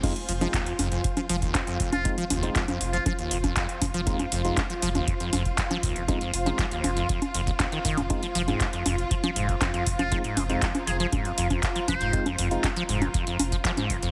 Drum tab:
CC |x---------------|----------------|----------------|----------------|
HH |xxoxxxoxxxoxxxox|xxoxxxoxxxoxxxox|xxoxxxoxxxoxxxox|xxoxxxoxxxoxxxox|
CP |----x-------x---|----x-------x---|----x-------x---|----x-------x---|
CG |o--o--o--o--o--o|--o--o--o--o--o-|-o--o--o--o--o--|o--o--o--o--o--o|
BD |o---o---o--oo-o-|o---o---o--oo-o-|o---o---o--oo-o-|o---o---o--oo-o-|

CC |----------------|----------------|----------------|
HH |xxoxxxoxxxoxxxox|xxoxxxoxxxoxxxox|xxoxxxoxxxoxxxox|
CP |----x-------x---|----x-------x---|----x-------x---|
CG |o--o--o--o--o--o|--o--o--o--o--o-|-o--o--o--o--o--|
BD |o---o---o--oo-o-|o---o---o--oo-o-|o---o---o--oo-o-|